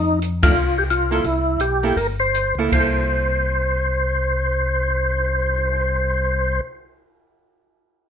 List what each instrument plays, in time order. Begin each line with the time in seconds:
Already playing: tonewheel organ F2 D#4
0.22 closed hi-hat
0.43 hollow-body jazz guitar D#3 A3 D4, tonewheel organ F4, kick, ride
0.54 tonewheel organ C2
0.78 tonewheel organ G4
0.90 tonewheel organ F4, closed hi-hat
1.11 hollow-body jazz guitar A#3 E4 A4, open hi-hat
1.24 tonewheel organ C2 E4, kick, open hi-hat
1.59 tonewheel organ B1 G4, closed hi-hat
1.83 hollow-body jazz guitar A#3 E4 A4, open hi-hat
1.96 tonewheel organ G1 A#4, kick, open hi-hat
2.20 tonewheel organ C5
2.35 closed hi-hat
2.55 tonewheel organ C#2, hollow-body jazz guitar A#3 E4
2.59 hollow-body jazz guitar A4
2.68 tonewheel organ C2, hollow-body jazz guitar A#3, kick
2.72 hollow-body jazz guitar E4, tonewheel organ C5, crash
2.80 hollow-body jazz guitar A4
2.97 cymbal swell